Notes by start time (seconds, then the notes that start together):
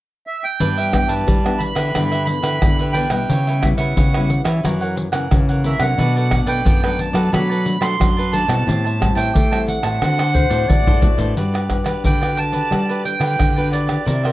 0.27 E5
0.44 G5
0.60 G2 E3 B3 D4 G4 B4 E5, pandeiro, shaker, surdo
0.78 G4 B4 E5, pandeiro, shaker
0.93 E3 B3 D4, pandeiro, tamborim, shaker, surdo
1.08 G2 G4 B4 E5 A5, pandeiro, shaker
1.27 D3 G3 D4 G4 B4 E5, pandeiro, shaker, surdo
1.44 E3 B3 D4 G4 B4 E5, pandeiro, tamborim, shaker
1.58 B5, muted cavaquinho stroke, pandeiro
1.75 D3 G4 B4 E5, pandeiro, tamborim, shaker
1.94 G2 D3 E3 B3 D4 G4 B4 E5, pandeiro, tamborim, shaker, surdo
2.12 G4 B4 E5, pandeiro, shaker
2.25 E3 B3 D4 B5, muted cavaquinho stroke, pandeiro, shaker
2.43 D3 G4 B4 E5, pandeiro, tamborim, shaker
2.62 D3 E3 B3 D4, pandeiro, tamborim, shaker, surdo
2.79 G4 B4 E5, pandeiro, shaker
2.93 E3 B3 D4 G4 B4 E5 G5, pandeiro, shaker
3.10 B2 G3 B3 E4 G4 B4 E5, pandeiro, tamborim, shaker
3.29 C#3 G4 B4 C#5 E5, pandeiro, shaker, surdo
3.47 B4 C#5 E5, pandeiro, shaker
3.61 G3 B3 E4 E5, pandeiro, tamborim, surdo
3.77 C#3 B4 C#5 E5 F#5, pandeiro, shaker
3.96 C#3 G4 B4 C#5 E5, pandeiro, shaker, surdo
4.13 G3 B3 E4 B4 C#5 E5, pandeiro, tamborim, shaker
4.30 muted cavaquinho stroke, pandeiro
4.45 E3 B4 C#5 E5, pandeiro, tamborim, shaker
4.63 F#2 E3 F#3 A#3 C#4 E4 A#4 C#5 F#5, pandeiro, tamborim, shaker, surdo
4.81 A#4 C#5 F#5, pandeiro, shaker
4.96 muted cavaquinho stroke, pandeiro, shaker
5.12 C#3 E3 A#3 C#4 A#4 C#5 F#5, pandeiro, tamborim, shaker
5.31 C#3 E3 A#3 C#4, pandeiro, tamborim, shaker, surdo
5.49 A#4 C#5 F#5, pandeiro, shaker
5.64 E3 A#3 C#4 E4 A#4 C#5 E5 F#5, pandeiro
5.79 C3 F#3 A3 D4 A#4 C#5 F#5, pandeiro, tamborim, shaker
5.98 B2 D4 A4 B4 D5, pandeiro, shaker, surdo
6.15 A4 B4 D5, pandeiro, shaker
6.31 F#3 A3 D4, pandeiro, tamborim, surdo
6.46 B2 A4 B4 D5 G5, pandeiro, shaker
6.65 F#2 B3 D4 A4 B4 D5, pandeiro, shaker, surdo
6.82 F#3 A3 D4 A4 B4 D5, pandeiro, tamborim, shaker
6.98 A5, muted cavaquinho stroke, pandeiro
7.13 F#3 A4 B4 D5, pandeiro, tamborim, shaker
7.32 B2 F#3 A3 D4 A4 B4 D5 B5, pandeiro, tamborim, shaker, surdo
7.49 A4 B4 D5, pandeiro, shaker
7.65 F#3 A3 D4, muted cavaquinho stroke, pandeiro, shaker
7.81 F#3 A3 D4 A4 D5 C6, pandeiro, tamborim, shaker
7.99 F#2 F#3 A3 D4, pandeiro, tamborim, shaker, surdo
8.17 A4 B4 D5, pandeiro, shaker
8.32 F#3 A3 D4 A4 B4 D5 A5, pandeiro, shaker
8.48 B2 G3 C4 E4 A4 B4 D5, pandeiro, tamborim, shaker
8.67 A2 G4 C5 E5 A5, pandeiro, shaker, surdo
8.84 C5 E5 A5, pandeiro, shaker
8.99 G3 C4 E4, pandeiro, tamborim, shaker, surdo
9.15 A2 C5 E5 G5 A5, pandeiro, shaker
9.34 E3 A3 G4 C5 E5 A5, pandeiro, shaker, surdo
9.51 G3 C4 E4 C5 E5 A5, pandeiro, tamborim, shaker
9.66 F#5, muted cavaquinho stroke, pandeiro, shaker
9.83 A2 C5 E5 A5, pandeiro, tamborim, shaker
10.01 D3 A3 C4 F#4 A4 C5 D5, pandeiro, tamborim, shaker, surdo
10.19 A4 C5 D5, pandeiro, tamborim, shaker
10.34 A3 C4 F#4 C5, muted cavaquinho stroke, surdo, pandeiro, shaker
10.50 A2 A3 C4 F#4 A4 C5 D5, pandeiro, shaker
10.69 A2 A3 C4 F#4 D5, pandeiro, shaker, surdo
10.86 A4 C5 D5, pandeiro, shaker, surdo
11.01 A3 C4 F#4 A4 C5 D5, pandeiro, surdo
11.17 A2 D4 F#4 A4 B4 C5 D5, pandeiro, shaker, surdo
11.36 G2 G3 F#4 G4 B4 D5, pandeiro, shaker, surdo
11.54 G4 B4 D5, pandeiro, tamborim, shaker
11.70 D4 F#4 B4, pandeiro, tamborim, shaker, surdo
11.84 G4 B4 D5, pandeiro, tamborim, shaker
12.04 D3 F#4 G4 B4 D5 G5, pandeiro, shaker, surdo
12.21 D4 F#4 G4 B4 D5, pandeiro, tamborim, shaker
12.37 A5, muted cavaquinho stroke, pandeiro
12.52 G4 B4 D5, pandeiro, shaker
12.71 G3 D4 F#4 G4 B4 D5, pandeiro, tamborim, shaker, surdo
12.89 G4 B4 D5, pandeiro, shaker
13.04 D4 B4 G5, muted cavaquinho stroke, pandeiro
13.19 D3 G4 B4 D5, pandeiro, tamborim, shaker
13.39 D3, pandeiro, tamborim, shaker, surdo
13.56 D4 F#4 G4 B4 D5, pandeiro, shaker
13.71 F#4 G4 B4 D5, pandeiro, shaker
13.87 G4 B4 D5, pandeiro, tamborim, shaker
14.05 C3 A#3 E4 G4 A#4 C5 E5, pandeiro, shaker, surdo
14.23 A#4 C5 E5, pandeiro, tamborim, shaker